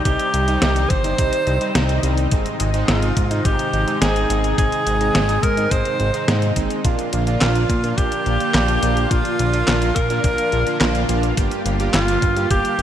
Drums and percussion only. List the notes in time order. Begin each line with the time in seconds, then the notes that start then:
0.05 kick, closed hi-hat
0.20 closed hi-hat
0.34 closed hi-hat
0.48 closed hi-hat
0.62 snare, closed hi-hat
0.76 closed hi-hat
0.90 kick, closed hi-hat
1.04 closed hi-hat
1.18 kick, closed hi-hat
1.33 closed hi-hat
1.47 closed hi-hat
1.61 closed hi-hat
1.75 snare, closed hi-hat
1.89 closed hi-hat
2.03 closed hi-hat
2.18 closed hi-hat
2.31 kick, closed hi-hat
2.46 closed hi-hat
2.60 closed hi-hat
2.74 closed hi-hat
2.88 snare, closed hi-hat
3.02 closed hi-hat
3.17 kick, closed hi-hat
3.31 closed hi-hat
3.45 kick, closed hi-hat
3.59 closed hi-hat
3.73 closed hi-hat
3.88 closed hi-hat
4.02 snare, closed hi-hat
4.16 closed hi-hat
4.30 closed hi-hat
4.44 closed hi-hat
4.58 kick, closed hi-hat
4.72 closed hi-hat
4.87 closed hi-hat
5.01 closed hi-hat
5.15 snare, closed hi-hat
5.29 closed hi-hat
5.43 kick, closed hi-hat
5.57 closed hi-hat
5.71 kick, closed hi-hat
5.85 closed hi-hat
6.00 closed hi-hat
6.14 closed hi-hat
6.28 snare, closed hi-hat
6.42 closed hi-hat
6.56 kick, closed hi-hat
6.70 closed hi-hat
6.85 kick, closed hi-hat
6.99 closed hi-hat
7.13 closed hi-hat
7.27 closed hi-hat
7.41 snare, clap, closed hi-hat
7.55 closed hi-hat
7.69 kick, closed hi-hat
7.84 closed hi-hat
7.98 kick, closed hi-hat
8.12 closed hi-hat
8.26 closed hi-hat
8.40 closed hi-hat
8.54 snare, clap, closed hi-hat
8.68 closed hi-hat
8.83 closed hi-hat
8.97 closed hi-hat
9.11 kick, closed hi-hat
9.25 closed hi-hat
9.39 closed hi-hat
9.54 closed hi-hat
9.68 snare, clap, closed hi-hat
9.82 closed hi-hat
9.96 kick, closed hi-hat
10.10 closed hi-hat
10.24 kick, closed hi-hat
10.38 closed hi-hat
10.52 closed hi-hat
10.67 closed hi-hat
10.81 snare, clap, closed hi-hat
10.95 closed hi-hat
11.09 closed hi-hat
11.23 closed hi-hat
11.37 kick, closed hi-hat
11.51 closed hi-hat
11.66 closed hi-hat
11.80 closed hi-hat
11.94 snare, clap, closed hi-hat
12.08 closed hi-hat
12.22 kick, closed hi-hat
12.37 closed hi-hat
12.51 kick, closed hi-hat
12.65 closed hi-hat
12.79 closed hi-hat